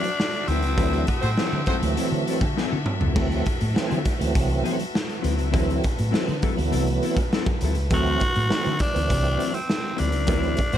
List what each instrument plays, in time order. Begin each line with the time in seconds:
Already playing: tenor saxophone D4, string section F#4 A4 D5 E5
0.04 muted clean electric guitar stroke, closed hi-hat
0.19 muted clean electric guitar stroke, snare
0.33 muted clean electric guitar stroke, closed hi-hat
0.48 fingered electric bass D2, clean electric guitar F#3 C4 E4 B4, tenor saxophone C4, closed hi-hat
0.62 fingered electric bass C#2, clean electric guitar F#3 C4 E4 B4, closed hi-hat
0.76 fingered electric bass D2, tonewheel organ E3 F#3 A3 D4, clean electric guitar F#3 C4 E4 B4, kick, closed hi-hat
0.93 closed hi-hat
1.07 tenor saxophone C4, kick, closed hi-hat
1.22 fingered electric bass A2, horn section A3 F#4 C5, muted clean electric guitar stroke, closed hi-hat
1.36 tonewheel organ E3 F#3 A3 C4, clean electric guitar F#3 C4 E4 A4, snare
1.53 fingered electric bass D3, muted clean electric guitar stroke
1.66 clean electric guitar F#3 C4 E4 A4, horn section A3 F#4 C5, kick, closed hi-hat
1.80 fingered electric bass D2, tonewheel organ E3 F#3 A3 C4, muted clean electric guitar stroke, closed hi-hat
1.97 clean electric guitar F#3 C4 E4 A4, closed hi-hat
2.11 fingered electric bass D3, muted clean electric guitar stroke, closed hi-hat
2.27 clean electric guitar F#3 C4 E4 A4, closed hi-hat
2.41 fingered electric bass D3, muted clean electric guitar stroke, kick, closed hi-hat
2.56 clean electric guitar F#3 C4 E4 A4, snare
2.73 fingered electric bass D3
2.86 muted clean electric guitar stroke, mid tom
3.01 fingered electric bass C#2, clean electric guitar F#3 C4 E4 A4, floor tom
3.14 fingered electric bass D2, tonewheel organ E3 F#3 A3 C4, clean electric guitar F#3 C4 E4 A4, string section B4, kick, crash
3.32 closed hi-hat
3.46 kick, closed hi-hat
3.60 fingered electric bass A2, muted clean electric guitar stroke, closed hi-hat
3.74 tonewheel organ E3 F#3 A3 C4, muted clean electric guitar stroke, muted fingered electric bass stroke, snare
3.88 clean electric guitar F#3 C4 E4 A4, closed hi-hat
3.92 fingered electric bass D3
4.05 kick, snare, closed hi-hat
4.19 fingered electric bass D2, tonewheel organ E3 F#3 A3 C4, muted clean electric guitar stroke, closed hi-hat
4.35 fingered electric bass C2, muted clean electric guitar stroke, kick, closed hi-hat
4.49 muted clean electric guitar stroke, closed hi-hat
4.63 clean electric guitar F#3 C4 E4 A4, closed hi-hat
4.78 muted clean electric guitar stroke, closed hi-hat
4.93 muted clean electric guitar stroke, snare
5.07 muted clean electric guitar stroke, closed hi-hat
5.21 fingered electric bass D2, clean electric guitar F#3 C4 E4 B4, closed hi-hat
5.36 fingered electric bass C#2, clean electric guitar F#3 C4 E4 B4, closed hi-hat
5.51 fingered electric bass D2, tonewheel organ E3 F#3 A3 C4, clean electric guitar F#3 C4 E4 B4, kick, closed hi-hat
5.70 closed hi-hat
5.84 kick, closed hi-hat
5.98 fingered electric bass A2, muted clean electric guitar stroke, closed hi-hat
6.11 tonewheel organ E3 F#3 A3 C4, clean electric guitar F#3 C4 E4 A4, muted fingered electric bass stroke, snare
6.27 fingered electric bass D3, muted clean electric guitar stroke, closed hi-hat
6.42 clean electric guitar F#3 C4 E4 A4, kick, closed hi-hat
6.56 fingered electric bass D2, tonewheel organ E3 F#3 A3 B3, muted clean electric guitar stroke, closed hi-hat
6.71 fingered electric bass C2, clean electric guitar F#3 C4 E4 A4, closed hi-hat
6.86 muted clean electric guitar stroke, closed hi-hat
7.02 clean electric guitar F#3 C4 E4 A4, closed hi-hat
7.17 muted clean electric guitar stroke, kick, closed hi-hat
7.33 clean electric guitar F#3 C4 E4 A4, snare
7.46 muted clean electric guitar stroke, kick, closed hi-hat
7.61 fingered electric bass D2, clean electric guitar F#3 C4 E4 A4, closed hi-hat
7.75 fingered electric bass C#2, muted clean electric guitar stroke, closed hi-hat
7.90 fingered electric bass D2, tonewheel organ E3 F#3 A3 C4, clean electric guitar F#3 C4 E4 A4, tenor saxophone F#4, kick, closed hi-hat
8.06 closed hi-hat
8.20 kick, closed hi-hat
8.35 fingered electric bass A2, muted clean electric guitar stroke, closed hi-hat
8.49 tonewheel organ E3 F#3 A3 C4, muted clean electric guitar stroke, muted fingered electric bass stroke, snare
8.64 fingered electric bass D3, clean electric guitar F#3 C4 E4 A4, closed hi-hat
8.79 tenor saxophone D4, kick, snare, closed hi-hat
8.93 fingered electric bass D2, tonewheel organ E3 F3 A3 C4, muted clean electric guitar stroke, closed hi-hat
9.00 tonewheel organ F#3
9.08 fingered electric bass C2, muted clean electric guitar stroke, kick, closed hi-hat
9.23 muted clean electric guitar stroke, closed hi-hat
9.37 clean electric guitar F#3 C4 E4 A4, closed hi-hat
9.53 tenor saxophone C4, muted clean electric guitar stroke, closed hi-hat
9.66 muted clean electric guitar stroke, snare
9.82 muted clean electric guitar stroke
9.96 clean electric guitar F#3 C4 E4 B4, tenor saxophone D4, closed hi-hat
10.00 fingered electric bass D2
10.11 fingered electric bass C#2, clean electric guitar F#3 C4 E4 B4, closed hi-hat
10.25 fingered electric bass D2, tonewheel organ E3 F#3 A3, clean electric guitar F3 B3 D#4 A#4, kick, closed hi-hat
10.29 tonewheel organ C4
10.37 clean electric guitar F#3 C4 E4 B4
10.43 closed hi-hat
10.57 kick, closed hi-hat
10.72 fingered electric bass A2, horn section A3 F#4 C5, muted clean electric guitar stroke, closed hi-hat